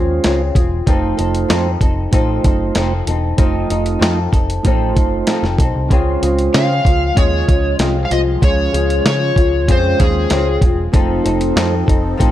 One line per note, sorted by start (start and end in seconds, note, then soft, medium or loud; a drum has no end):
0.00 0.18 D#2 medium
0.00 0.41 G#3 medium
0.00 0.24 C4 soft
0.00 0.41 C#4 medium
0.00 0.24 F4 soft
0.00 0.42 F4 medium
0.00 0.23 G#4 medium
0.00 0.42 C5 medium
0.24 0.50 C#2 loud
0.24 0.56 C#3 medium
0.24 0.56 C4 medium
0.24 0.55 F4 medium
0.24 0.54 G#4 medium
0.24 snare loud
0.24 closed hi-hat medium
0.55 0.80 E1 medium
0.55 0.86 C4 medium
0.55 0.87 F4 soft
0.55 0.86 G#4 medium
0.55 kick loud
0.55 closed hi-hat medium
0.86 1.12 F1 medium
0.86 1.18 F3 medium
0.86 1.67 A3 medium
0.86 1.19 C4 medium
0.86 1.68 D#4 medium
0.86 1.18 D#4 medium
0.86 1.68 F4 medium
0.86 1.16 A4 medium
0.86 0.94 B4 medium
0.86 kick loud
0.86 closed hi-hat medium
0.95 1.72 C5 loud
1.17 1.44 F1 medium
1.17 1.48 C4 soft
1.17 1.49 D#4 medium
1.17 1.49 A4 medium
1.17 closed hi-hat medium
1.35 closed hi-hat soft
1.48 1.75 F2 medium
1.48 1.80 F3 medium
1.48 1.81 C4 medium
1.48 1.81 D#4 medium
1.48 1.80 A4 medium
1.48 snare loud
1.48 closed hi-hat medium
1.81 2.06 F1 medium
1.81 2.12 C4 soft
1.81 2.12 D#4 medium
1.81 2.12 A4 medium
1.81 kick medium
1.81 closed hi-hat medium
2.11 2.38 A1 medium
2.11 2.44 F3 medium
2.11 2.93 A3 medium
2.11 2.44 C4 medium
2.11 2.93 D#4 medium
2.11 2.44 D#4 medium
2.11 2.93 F4 medium
2.11 2.43 A4 medium
2.11 2.94 C5 medium
2.11 kick medium
2.11 closed hi-hat loud
2.44 2.70 F#1 medium
2.44 2.75 C4 soft
2.44 2.76 D#4 medium
2.44 2.75 A4 medium
2.44 kick medium
2.44 closed hi-hat medium
2.75 3.01 F1 medium
2.75 3.07 F3 medium
2.75 3.07 C4 medium
2.75 3.08 D#4 medium
2.75 3.06 A4 medium
2.75 snare loud
2.75 closed hi-hat medium
3.07 3.32 E1 medium
3.07 3.37 C4 medium
3.07 3.37 D#4 medium
3.07 3.38 A4 medium
3.07 closed hi-hat medium
3.37 3.64 F1 medium
3.37 3.70 F3 medium
3.37 4.19 A3 medium
3.37 3.70 C4 medium
3.37 4.19 D#4 medium
3.37 3.70 D#4 medium
3.37 4.20 F4 medium
3.37 3.69 A4 medium
3.37 4.20 D#5 medium
3.37 kick loud
3.37 closed hi-hat medium
3.70 3.95 F1 medium
3.70 3.99 C4 soft
3.70 4.00 D#4 medium
3.70 4.01 A4 medium
3.70 closed hi-hat medium
3.86 closed hi-hat soft
3.99 4.26 F2 loud
3.99 4.32 F3 medium
3.99 4.33 C4 medium
3.99 4.32 D#4 medium
3.99 4.31 A4 medium
3.99 snare loud
3.99 closed hi-hat medium
4.32 4.58 F1 medium
4.32 4.65 C4 soft
4.32 4.65 D#4 medium
4.32 4.64 A4 medium
4.32 kick medium
4.32 closed hi-hat medium
4.50 closed hi-hat medium
4.63 4.96 A1 medium
4.63 4.96 F3 medium
4.63 5.45 A3 medium
4.63 4.97 C4 medium
4.63 5.45 D#4 medium
4.63 4.96 D#4 medium
4.63 5.45 F4 medium
4.63 5.46 C5 medium
4.63 kick medium
4.63 closed hi-hat medium
4.67 4.94 A4 medium
4.95 5.21 F#1 medium
4.95 5.27 C4 soft
4.95 5.27 D#4 medium
4.95 5.27 A4 medium
4.95 kick medium
4.95 closed hi-hat medium
5.27 5.59 F3 medium
5.27 5.59 C4 medium
5.27 5.58 D#4 medium
5.27 5.57 A4 medium
5.27 snare loud
5.27 closed hi-hat medium
5.43 5.55 F1 medium
5.43 snare soft
5.58 5.71 B1 medium
5.58 5.91 C4 soft
5.58 5.91 D#4 medium
5.58 5.90 A4 medium
5.58 kick medium
5.58 closed hi-hat medium
5.75 5.88 C2 medium
5.87 6.16 C#2 medium
5.87 6.22 C#3 medium
5.87 10.89 F3 medium
5.87 6.70 G#3 medium
5.87 10.90 G#3 medium
5.87 6.70 C#4 medium
5.87 10.89 F4 medium
5.87 6.71 F4 medium
5.87 5.97 B4 medium
5.87 kick loud
5.87 closed hi-hat medium
5.92 6.23 C4 medium
5.92 6.22 F4 medium
5.92 6.21 G#4 medium
5.97 6.75 C5 loud
6.22 6.48 C#2 medium
6.22 6.54 C4 soft
6.22 6.54 F4 medium
6.22 6.54 G#4 medium
6.22 closed hi-hat medium
6.39 closed hi-hat soft
6.54 6.85 C#3 medium
6.54 6.79 C#3 medium
6.54 6.86 C4 medium
6.54 6.86 F4 medium
6.54 6.85 G#4 medium
6.54 7.19 F5 loud
6.54 snare loud
6.54 closed hi-hat medium
6.85 7.10 C#2 medium
6.85 7.18 C4 soft
6.85 7.16 F4 soft
6.85 7.17 G#4 soft
6.85 kick medium
6.85 closed hi-hat medium
7.15 7.42 D#2 medium
7.15 7.48 C#3 medium
7.15 7.96 G#3 medium
7.15 7.97 C#4 medium
7.15 7.97 F4 medium
7.15 7.48 F4 medium
7.15 7.47 G#4 medium
7.15 7.76 C#5 medium
7.15 7.97 D#5 medium
7.15 kick medium
7.15 closed hi-hat medium
7.48 7.73 C#2 medium
7.48 7.79 F4 soft
7.48 7.79 G#4 soft
7.48 kick medium
7.48 closed hi-hat medium
7.79 8.04 C2 medium
7.79 8.11 C4 medium
7.79 8.10 F4 medium
7.79 8.09 G#4 medium
7.79 snare loud
7.79 closed hi-hat loud
8.05 8.11 F5 medium
8.10 8.36 C2 medium
8.10 8.43 C4 soft
8.10 8.42 F4 soft
8.10 8.42 G#4 medium
8.10 8.20 D#5 medium
8.10 closed hi-hat medium
8.41 8.67 C#2 loud
8.41 8.73 C#3 medium
8.41 9.22 G#3 medium
8.41 9.23 C#4 medium
8.41 9.23 F4 medium
8.41 8.72 F4 medium
8.41 9.23 G#4 medium
8.41 8.72 G#4 medium
8.41 9.06 C#5 loud
8.41 kick loud
8.41 closed hi-hat medium
8.73 8.99 C#2 medium
8.73 9.05 F4 soft
8.73 9.05 G#4 medium
8.73 closed hi-hat medium
8.90 closed hi-hat medium
9.05 9.30 C#3 medium
9.05 9.37 C#3 medium
9.05 9.36 F4 medium
9.05 9.36 G#4 medium
9.05 9.71 C#5 medium
9.05 snare loud
9.05 closed hi-hat medium
9.36 9.68 C#2 medium
9.36 9.68 F4 medium
9.36 9.68 G#4 soft
9.36 kick medium
9.36 closed hi-hat medium
9.66 9.93 F2 medium
9.66 10.00 C#3 medium
9.66 10.48 G#3 medium
9.66 10.00 C4 medium
9.66 10.49 C#4 medium
9.66 10.49 F4 medium
9.66 9.99 F4 medium
9.66 9.98 G#4 medium
9.66 10.50 C5 medium
9.66 kick medium
9.66 closed hi-hat loud
9.72 10.02 C5 medium
9.99 10.25 D#2 medium
9.99 10.30 C4 soft
9.99 10.31 F4 soft
9.99 10.31 G#4 medium
9.99 10.59 G#4 medium
9.99 kick medium
9.99 closed hi-hat medium
10.30 10.56 C#2 medium
10.30 10.62 C#3 medium
10.30 10.63 C4 medium
10.30 10.63 F4 medium
10.30 10.61 G#4 medium
10.30 snare loud
10.30 closed hi-hat loud
10.61 10.87 E1 medium
10.61 10.94 F4 soft
10.61 10.94 G#4 medium
10.61 kick medium
10.61 closed hi-hat medium
10.66 10.92 C4 soft
10.92 11.19 F1 loud
10.92 11.25 F3 medium
10.92 12.31 F3 medium
10.92 11.74 A3 medium
10.92 11.25 C4 medium
10.92 12.31 C4 medium
10.92 11.75 D#4 medium
10.92 11.24 D#4 medium
10.92 12.31 D#4 medium
10.92 11.75 F4 medium
10.92 12.31 A4 medium
10.92 11.23 A4 medium
10.92 11.75 C5 medium
10.92 kick loud
10.92 closed hi-hat medium
11.24 11.51 F1 loud
11.24 11.55 C4 medium
11.24 11.57 D#4 medium
11.24 11.56 A4 medium
11.24 closed hi-hat medium
11.41 closed hi-hat medium
11.56 11.82 F2 medium
11.56 11.88 F3 medium
11.56 11.88 C4 medium
11.56 11.87 D#4 medium
11.56 11.85 A4 medium
11.56 snare loud
11.56 closed hi-hat medium
11.86 12.13 F1 loud
11.86 12.18 C4 medium
11.86 12.18 D#4 medium
11.86 12.18 A4 medium
11.86 kick medium
11.86 closed hi-hat medium
12.17 12.31 A1 medium
12.17 12.31 F3 medium
12.17 12.31 A3 medium
12.17 12.31 C4 medium
12.17 12.31 D#4 medium
12.17 12.31 F4 medium
12.17 12.31 A4 medium
12.17 12.31 C5 medium
12.17 kick medium
12.17 closed hi-hat loud